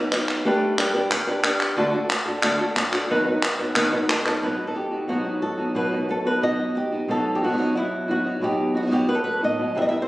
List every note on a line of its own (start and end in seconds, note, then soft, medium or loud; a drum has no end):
0.00 0.12 F#3 soft
0.00 0.12 B3 medium
0.00 0.11 D#4 medium
0.00 0.11 B4 medium
0.12 0.45 F#3 soft
0.12 0.45 B3 soft
0.12 0.44 D#4 soft
0.12 0.44 B4 medium
0.12 clap medium
0.29 clap medium
0.45 0.77 G3 medium
0.45 0.76 A3 medium
0.45 0.77 D4 medium
0.45 0.78 G4 medium
0.45 0.78 B4 medium
0.77 0.93 A3 medium
0.77 0.94 D4 medium
0.77 0.93 G4 medium
0.77 0.93 B4 medium
0.77 clap medium
0.94 1.10 D4 soft
0.94 1.10 G4 soft
0.94 1.10 B4 medium
1.11 muted nylon-string guitar stroke medium
1.11 clap medium
1.27 1.44 D4 soft
1.27 1.43 G4 soft
1.27 1.42 B4 medium
1.43 1.76 D4 soft
1.43 1.77 G4 medium
1.43 1.76 B4 medium
1.43 clap medium
1.60 clap medium
1.76 1.93 D3 medium
1.76 1.93 A3 medium
1.76 1.93 D4 medium
1.76 1.93 F#4 medium
1.76 1.92 A4 medium
1.93 2.09 D4 soft
1.93 2.09 F#4 medium
1.93 2.09 A4 medium
2.09 muted nylon-string guitar stroke medium
2.09 clap medium
2.25 2.42 D4 soft
2.25 2.42 F#4 medium
2.25 2.42 A4 medium
2.42 2.59 D3 medium
2.42 2.59 A3 medium
2.42 2.59 D4 medium
2.42 2.59 F#4 medium
2.42 2.58 A4 medium
2.42 clap medium
2.59 2.75 D4 soft
2.59 2.75 F#4 medium
2.59 2.75 A4 medium
2.76 muted nylon-string guitar stroke medium
2.76 clap medium
2.92 3.09 D4 soft
2.92 3.09 F#4 medium
2.92 3.08 A4 medium
2.92 clap medium
3.09 3.25 B2 medium
3.09 3.26 D#3 medium
3.09 3.26 F#3 medium
3.09 3.26 B3 medium
3.09 3.25 D#4 medium
3.09 3.25 B4 medium
3.26 3.42 F#3 soft
3.26 3.42 B3 soft
3.26 3.42 D#4 medium
3.26 3.42 B4 medium
3.43 muted nylon-string guitar stroke medium
3.43 clap medium
3.59 3.75 F#3 soft
3.59 3.75 B3 medium
3.59 3.75 D#4 medium
3.59 3.75 B4 medium
3.75 3.91 B2 medium
3.75 3.91 D#3 medium
3.75 3.92 F#3 medium
3.75 3.92 B3 medium
3.75 3.91 D#4 medium
3.75 3.91 B4 medium
3.75 clap medium
3.92 4.08 F#3 soft
3.92 4.08 B3 soft
3.92 4.08 D#4 medium
3.92 4.08 B4 medium
4.09 4.16 A4 medium
4.09 muted nylon-string guitar stroke medium
4.09 clap medium
4.15 4.22 B4 medium
4.23 4.42 D#4 soft
4.23 4.42 A4 medium
4.23 4.41 B4 medium
4.23 clap medium
4.27 4.42 F#3 soft
4.27 4.42 B3 soft
4.42 4.58 B2 medium
4.42 5.74 B2 medium
4.42 4.58 F#3 medium
4.42 4.58 B3 medium
4.42 4.58 D#4 medium
4.42 4.57 F#4 medium
4.42 4.67 B4 medium
4.59 4.74 B3 soft
4.59 4.74 D#4 soft
4.59 4.75 F#4 soft
4.67 5.09 A4 medium
4.75 5.08 G4 medium
4.75 muted nylon-string guitar stroke soft
4.91 5.08 B3 soft
4.91 5.08 D#4 soft
4.91 5.07 F#4 soft
5.08 5.24 B2 medium
5.08 6.80 F#3 medium
5.08 5.25 F#3 medium
5.08 5.25 B3 medium
5.08 5.24 D#4 medium
5.08 5.75 F#4 medium
5.08 5.23 F#4 medium
5.24 5.41 B3 soft
5.24 5.41 D#4 soft
5.24 5.41 F#4 soft
5.42 5.75 A4 medium
5.42 muted nylon-string guitar stroke soft
5.58 5.74 B3 soft
5.58 5.75 D#4 soft
5.58 5.74 F#4 soft
5.75 5.91 B2 medium
5.75 7.08 B2 medium
5.75 5.91 F#3 medium
5.75 5.91 B3 medium
5.75 5.91 D#4 medium
5.75 5.90 F#4 medium
5.75 6.26 B4 medium
5.91 6.08 B3 soft
5.91 7.14 D#4 soft
5.91 6.08 D#4 soft
5.91 6.07 F#4 soft
6.09 6.59 A4 medium
6.09 muted nylon-string guitar stroke soft
6.25 6.41 B3 soft
6.25 6.42 D#4 soft
6.25 6.41 F#4 soft
6.25 6.42 B4 medium
6.41 6.58 B2 medium
6.41 6.58 F#3 medium
6.41 6.58 B3 medium
6.41 6.58 D#4 medium
6.41 6.57 F#4 medium
6.41 7.09 D#5 medium
6.58 6.74 B3 soft
6.58 6.75 D#4 soft
6.58 6.74 F#4 soft
6.75 7.09 G4 medium
6.75 muted nylon-string guitar stroke medium
6.92 7.08 B3 soft
6.92 7.08 D#4 soft
6.92 7.08 F#4 soft
7.08 7.41 B2 medium
7.08 8.40 B2 medium
7.08 7.41 F#3 medium
7.08 7.41 B3 medium
7.08 7.41 D#4 medium
7.08 7.40 F#4 medium
7.08 7.68 A4 medium
7.35 7.43 G4 medium
7.42 7.48 F#3 soft
7.42 7.48 B3 soft
7.42 7.45 D#4 soft
7.42 7.49 D#4 soft
7.42 7.44 F#4 soft
7.42 7.76 F#4 medium
7.46 7.52 F#3 soft
7.46 7.53 B3 soft
7.46 7.49 F#4 soft
7.50 7.57 F#3 medium
7.50 7.57 B3 medium
7.50 7.53 D#4 soft
7.50 7.53 F#4 medium
7.54 7.74 B2 medium
7.54 7.74 F#3 medium
7.54 7.58 D#4 soft
7.54 7.58 F#4 medium
7.59 7.74 B3 medium
7.59 7.75 D#4 medium
7.59 7.75 F#4 medium
7.75 9.07 F#3 medium
7.75 8.09 E4 medium
7.75 muted nylon-string guitar stroke soft
8.08 8.24 B3 soft
8.08 8.25 D#4 soft
8.08 8.24 F#4 soft
8.08 8.43 F#4 medium
8.25 8.41 F#3 soft
8.25 8.41 B3 soft
8.25 8.41 D#4 soft
8.25 8.42 F#4 soft
8.41 8.74 B2 medium
8.41 9.41 B2 medium
8.41 8.75 B3 medium
8.41 8.74 D#4 medium
8.41 8.76 G4 medium
8.74 8.81 B3 soft
8.74 8.82 D#4 soft
8.74 8.82 F#4 soft
8.74 8.93 F#4 medium
8.82 8.86 F#3 soft
8.82 8.86 B3 soft
8.82 8.86 D#4 soft
8.82 8.87 F#4 soft
8.87 8.90 F#3 medium
8.87 8.91 B3 medium
8.87 8.91 D#4 soft
8.87 8.91 F#4 medium
8.91 9.07 B2 medium
8.91 9.07 F#3 medium
8.91 9.07 B3 medium
8.91 9.08 D#4 medium
8.91 9.08 F#4 medium
8.91 9.09 G4 medium
9.08 9.75 F#3 medium
9.08 9.23 B4 medium
9.08 muted nylon-string guitar stroke soft
9.15 9.55 A4 medium
9.24 9.42 B4 medium
9.41 9.58 A2 medium
9.41 9.58 B3 soft
9.41 9.58 D#4 soft
9.41 9.57 F#4 soft
9.41 9.76 D#5 medium
9.58 9.75 B2 medium
9.58 9.74 F#3 soft
9.58 9.75 B3 soft
9.58 9.75 D#4 soft
9.58 9.75 F#4 soft
9.75 9.91 C3 medium
9.75 10.08 C3 medium
9.75 9.91 E3 medium
9.75 9.91 G3 medium
9.75 9.91 C4 medium
9.75 9.90 E4 medium
9.75 9.81 E5 medium
9.82 9.88 D#5 medium
9.89 10.08 C4 soft
9.89 10.07 E4 soft
9.89 10.00 E5 medium
9.93 10.07 G3 soft
10.02 10.08 C5 medium